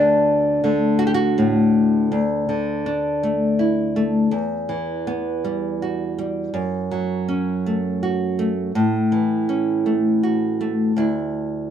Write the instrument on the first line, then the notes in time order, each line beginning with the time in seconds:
nylon-string guitar
Already playing: D2 D3 A3 D4
0.64 D3 A3
0.99 F#4
1.07 G4
1.14 F#4
1.38 A2 A3
2.12 D2
2.49 D3
2.86 D4
3.23 A3
3.59 E4
3.96 A3
4.31 E2
4.69 E3
5.07 B3
5.44 G3
5.82 F#4
6.18 G3
6.54 F#2
6.91 F#3
7.28 C#4
7.66 A3
8.03 F#4
8.39 A3
8.75 A2
9.12 E3
9.49 C#4
9.86 A3
10.23 F#4
10.61 A3
10.96 D2 E4